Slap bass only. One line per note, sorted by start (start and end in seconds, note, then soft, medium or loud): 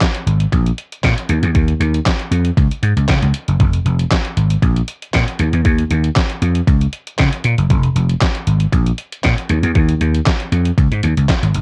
0.26 0.44 G#1 medium
0.52 0.70 A#1 loud
1.04 1.13 A#2 medium
1.29 1.39 D#2 loud
1.43 1.51 E2 medium
1.55 1.73 D#2 loud
1.80 1.98 D#2 medium
2.31 2.49 F2 medium
2.57 2.67 C#2 medium
2.83 2.92 G#2 medium
2.96 3.05 C#2 medium
3.08 3.18 C#3 loud
3.22 3.31 C#2 medium
3.48 3.56 F#1 medium
3.60 3.78 F1 loud
3.85 4.03 F1 medium
4.37 4.55 G#1 medium
4.62 4.80 A#1 medium
5.14 5.23 A#2 medium
5.39 5.49 D#2 medium
5.53 5.61 E2 medium
5.65 5.83 D#2 loud
5.91 6.09 D#2 medium
6.42 6.60 F2 medium
6.67 6.85 C#2 loud
7.19 7.28 C#3 medium
7.44 7.54 A#2 medium
7.58 7.66 F#1 medium
7.70 7.88 F1 loud
7.95 8.14 F1 loud
8.47 8.65 G#1 medium
8.72 8.90 A#1 medium
9.24 9.33 A#2 loud
9.49 9.59 D#2 medium
9.63 9.71 E2 medium
9.75 9.93 D#2 loud
10.01 10.19 D#2 medium
10.52 10.70 F2 medium
10.78 10.87 C#2 medium
10.92 11.00 G#2 loud
11.04 11.13 D#2 medium
11.17 11.25 C#2 medium
11.43 11.51 G#1 medium
11.55 11.62 G1 medium